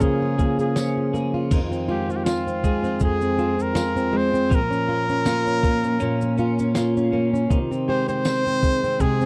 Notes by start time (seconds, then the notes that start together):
Already playing: F3 A#3 C#4 F4 G#4
0.00 C#3 A#3 G#4, kick, shaker
0.22 F4
0.38 A#3 G#4, kick, shaker
0.59 G#4, shaker
0.76 F3 C#4, snare, tambourine, shaker
0.97 F4
1.14 A#3 G#4, shaker
1.34 F4
1.51 F2 D#3, kick, crash, shaker
1.71 C4, shaker
1.88 G#3 F4 G4
2.09 C4 F4, shaker
2.16 G4
2.24 C4 F4, snare, tambourine, shaker
2.47 C4, shaker
2.64 G#3 G#4, kick, shaker
2.84 C4, snare, shaker
3.00 F2 G#3 G#4, kick, shaker
3.21 C4, shaker
3.38 C4 F4, shaker
3.59 C4 A#4, shaker
3.75 G#3 F4, snare, tambourine, shaker
3.96 C4, shaker
4.13 G#3 C4
4.17 C5
4.34 C4, shaker
4.50 A#2 F3, kick, shaker
4.55 A#4
4.71 C#4, shaker
4.88 A#3 F4
5.09 C#4, shaker
5.25 A#3 C#4 F4, snare, tambourine, shaker
5.47 C#4, shaker
5.63 A#3 F4, kick, shaker
5.83 C#4, snare, shaker
6.00 A#2 A#3 C#4, shaker
6.21 C#4, shaker
6.38 C#4 F4, shaker
6.59 C#4, shaker
6.75 A#3 F4, snare, tambourine, shaker
6.97 C#4, shaker
7.12 A#3 C#4
7.34 C#4, shaker
7.50 C3 D#3, kick, shaker
7.71 C4, shaker
7.88 G#3 G4 C5
8.08 C4 C5, shaker
8.25 C4, snare, tambourine, shaker
8.47 C4, shaker
8.63 G#3, kick, shaker
8.83 C4, snare, shaker
9.00 C3 G#3 G#4, kick, shaker
9.21 C4, shaker